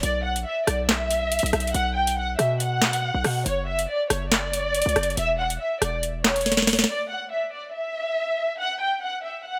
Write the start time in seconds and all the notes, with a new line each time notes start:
0.03 B1 D5, closed hi-hat
0.25 F#5
0.36 A#1, closed hi-hat
0.46 E5
0.67 B1 D5, cross-stick, closed hi-hat
0.89 E5, snare, clap
1.11 closed hi-hat
1.32 closed hi-hat
1.39 closed hi-hat
1.43 B1, closed hi-hat
1.53 B1, cross-stick, closed hi-hat
1.60 closed hi-hat
1.67 closed hi-hat
1.74 B1 F#5, closed hi-hat
1.96 G5
2.07 closed hi-hat
2.18 F#5
2.38 B2 E5, cross-stick, closed hi-hat
2.60 F#5, closed hi-hat
2.82 snare, clap
2.93 closed hi-hat
3.14 B1
3.24 B2, cross-stick, open hi-hat
3.46 F#1 C#5, closed hi-hat
3.67 E5
3.79 closed hi-hat
3.89 D5
4.10 F#1 C#5, cross-stick, closed hi-hat
4.31 D5, snare, clap
4.53 closed hi-hat
4.74 closed hi-hat
4.82 closed hi-hat
4.86 C#2, closed hi-hat
4.96 F#1, cross-stick, closed hi-hat
5.03 closed hi-hat
5.10 closed hi-hat
5.17 E1 E5, closed hi-hat
5.39 F#5
5.50 closed hi-hat
5.60 E5
5.82 E1 D5, cross-stick, closed hi-hat
6.03 closed hi-hat
6.24 C#5, snare, clap
6.36 closed hi-hat
6.41 closed hi-hat
6.46 snare, closed hi-hat
6.52 snare, closed hi-hat
6.57 snare
6.62 snare
6.67 snare, open hi-hat
6.73 snare
6.79 snare
6.84 snare
6.89 D5
7.10 F#5
7.31 E5
7.53 D5
7.74 E5
8.60 F#5
8.81 G5
9.03 F#5
9.24 E5
9.46 F#5